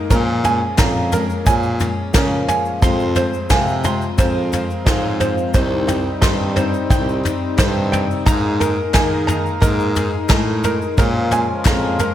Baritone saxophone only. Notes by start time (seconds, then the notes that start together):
0.11 A#2
0.78 F2
1.47 A#2
2.14 C#3
2.83 F2
3.50 C3
4.18 F2
4.87 G#2
5.55 C2
6.22 G2
6.90 C2
7.59 G2
8.26 G#2
8.94 D#3
9.62 G#2
10.30 A2
10.98 A#2
11.66 F2